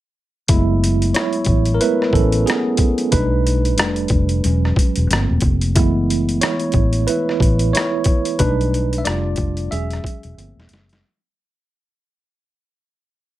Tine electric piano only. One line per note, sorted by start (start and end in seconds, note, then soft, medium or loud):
0.50 3.09 F#3 medium
0.50 1.12 G#3 medium
0.50 1.80 A3 soft
0.50 1.80 B3 soft
0.50 1.15 E4 medium
1.14 1.71 E4 medium
1.14 1.76 C#5 medium
1.74 1.80 A#4 medium
1.81 2.11 G#3 soft
1.81 2.11 A3 soft
1.81 2.11 B3 soft
1.81 1.97 E4 medium
1.81 1.95 B4 medium
2.13 2.45 C#4 medium
2.13 2.44 A4 medium
2.46 3.09 B3 medium
2.46 3.14 G#4 medium
3.12 3.75 G3 soft
3.12 3.75 A3 soft
3.12 3.78 D4 medium
3.12 3.75 D#4 medium
3.12 5.06 B4 medium
3.78 4.41 G3 soft
3.78 4.41 A3 soft
3.78 4.42 D4 soft
4.44 5.07 F#3 medium
4.44 5.07 G#3 soft
4.44 5.07 C#4 soft
5.10 5.56 F3 soft
5.10 5.56 A3 soft
5.10 5.57 A#3 soft
5.10 5.57 C4 medium
5.75 6.71 E3 medium
5.75 6.39 G#3 medium
5.75 6.71 A3 soft
5.75 6.71 B3 medium
5.75 6.42 E4 medium
6.41 7.05 E4 medium
6.41 7.10 C#5 medium
7.07 7.70 E4 medium
7.07 7.69 B4 medium
7.73 8.36 E4 medium
7.73 8.41 C#5 medium
8.39 9.02 G3 soft
8.39 9.03 A3 soft
8.39 8.96 D4 medium
8.39 9.03 D#4 medium
8.39 9.01 B4 medium
8.98 9.05 E5 medium
9.05 9.68 G3 medium
9.05 9.68 A3 soft
9.05 9.69 D4 medium
9.05 9.68 F4 medium
9.05 9.73 D5 medium
9.71 10.17 F#3 soft
9.71 10.18 G#3 soft
9.71 10.18 C#4 medium
9.71 10.67 G#4 medium
9.71 10.66 E5 medium
10.38 11.00 F3 soft
10.38 11.00 A3 soft
10.38 11.01 A#3 soft
10.38 11.01 C4 soft